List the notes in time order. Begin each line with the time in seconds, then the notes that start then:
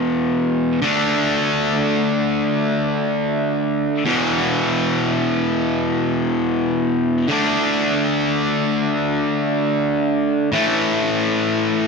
Already playing: E2 B2 E3
0.82 D3 A3 D4
4.05 E2 B2 E3
7.28 D3 A3 D4
10.52 A2 E3 A3